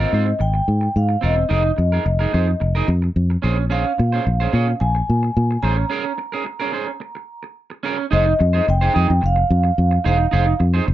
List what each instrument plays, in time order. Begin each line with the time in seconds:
Already playing: vibraphone D#5
0.00 clean electric guitar C4 F4 A#4
0.12 fingered electric bass G#2, clean electric guitar C4 F4 C5
0.26 muted clean electric guitar stroke
0.39 fingered electric bass G#1, vibraphone G5, muted clean electric guitar stroke
0.54 muted clean electric guitar stroke
0.68 fingered electric bass G#2
0.81 muted clean electric guitar stroke
0.96 fingered electric bass G#2, vibraphone F5
1.09 muted clean electric guitar stroke
1.21 fingered electric bass E1, clean electric guitar C4 F4 A#4, vibraphone D#5
1.36 muted clean electric guitar stroke
1.49 fingered electric bass F1, clean electric guitar D#4 G#4 A#4
1.64 muted clean electric guitar stroke
1.77 fingered electric bass F2, muted clean electric guitar stroke
1.92 clean electric guitar D#4 G#4 A#4
2.05 fingered electric bass F1, muted clean electric guitar stroke
2.19 clean electric guitar D#4 G#4 A#4
2.33 fingered electric bass F2, clean electric guitar D#4 G#4 C5
2.48 muted clean electric guitar stroke
2.60 fingered electric bass F1, muted clean electric guitar stroke
2.75 clean electric guitar D#4 G#4 A#4
2.88 fingered electric bass F2, muted clean electric guitar stroke
3.02 muted clean electric guitar stroke
3.16 fingered electric bass F2
3.30 muted clean electric guitar stroke
3.42 fingered electric bass A#1, clean electric guitar C#4 G#4 C5
3.58 muted clean electric guitar stroke
3.70 clean electric guitar C#4 G#4 C5, vibraphone F5
3.86 muted clean electric guitar stroke
3.98 fingered electric bass A#2, muted clean electric guitar stroke
4.12 clean electric guitar C#4 G#4 C5
4.25 fingered electric bass A#1, muted clean electric guitar stroke
4.40 clean electric guitar C#4 G#4 C5
4.53 fingered electric bass A#2, clean electric guitar C#4 G#4 C#5
4.68 muted clean electric guitar stroke
4.80 fingered electric bass A#1, vibraphone G#5, muted clean electric guitar stroke
4.95 muted clean electric guitar stroke
5.09 fingered electric bass A#2
5.23 muted clean electric guitar stroke
5.37 fingered electric bass A#2
5.51 muted clean electric guitar stroke
5.63 fingered electric bass A1, clean electric guitar C#4 G#4 C5, vibraphone A#5
5.77 muted clean electric guitar stroke
5.90 clean electric guitar C#4 G#4 A#4
6.05 muted clean electric guitar stroke
6.18 muted clean electric guitar stroke
6.32 clean electric guitar C#4 G#4 A#4
6.45 muted clean electric guitar stroke
6.60 clean electric guitar C#4 G#4 A#4
6.72 clean electric guitar C#4 G#4 C5
6.87 muted clean electric guitar stroke
7.00 muted clean electric guitar stroke
7.15 muted clean electric guitar stroke
7.43 muted clean electric guitar stroke
7.70 muted clean electric guitar stroke
7.83 clean electric guitar C#4 G#4 A#4
7.98 muted clean electric guitar stroke
8.11 fingered electric bass F1, clean electric guitar D#4 G#4 C5, vibraphone D#5
8.26 muted clean electric guitar stroke
8.39 fingered electric bass F2, muted clean electric guitar stroke
8.53 clean electric guitar D#4 G#4 C5
8.67 fingered electric bass F1, vibraphone G5, muted clean electric guitar stroke
8.81 clean electric guitar D#4 G#4 C5
8.94 fingered electric bass F2, clean electric guitar D#4 G#4 D#5
9.09 fingered electric bass F2, muted clean electric guitar stroke
9.21 fingered electric bass F1, muted clean electric guitar stroke
9.26 vibraphone F5
9.36 muted clean electric guitar stroke
9.50 fingered electric bass F2
9.64 muted clean electric guitar stroke
9.78 fingered electric bass F2
9.91 muted clean electric guitar stroke
10.04 fingered electric bass E1, clean electric guitar D#4 G#4 C5, vibraphone F5
10.18 muted clean electric guitar stroke
10.31 fingered electric bass F1, clean electric guitar D#4 G#4 C5
10.46 muted clean electric guitar stroke
10.60 fingered electric bass F2, muted clean electric guitar stroke
10.74 clean electric guitar D#4 G#4 C5
10.86 fingered electric bass F1, muted clean electric guitar stroke